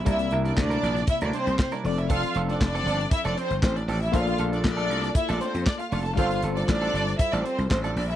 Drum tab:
HH |xxxx-xxxxxxx-xox|xxxx-xxxxxxx-xox|xxxx-xxxxxxx-xox|xxxx-xxxxxxx-xox|
CP |----x-------x---|----x-------x---|----x-------x---|----x-------x---|
SD |----o--o----o---|----o-------o---|----o--o----o---|----o--o----o---|
BD |o---o---o---o---|o---o---o---o---|o---o---o---o---|o---o---o---o---|